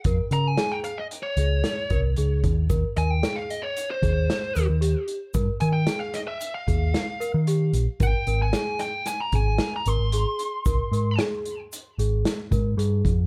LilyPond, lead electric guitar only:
\new Staff \with { instrumentName = "Lead electric guitar" } { \time 5/4 \key ees \mixolydian \tempo 4 = 113 r8 bes''16 aes''8 g''16 f''16 ees''8 des''4. r4 r16 | r8 aes''16 g''8 f''16 ees''16 des''8 c''4. r4 r16 | r8 aes''16 g''8 f''16 ees''16 fes''8 f''4. r4 r16 | g''8. aes''8. g''8 aes''16 bes''16 aes''8. bes''16 c'''4.~ |
c'''4 r1 | }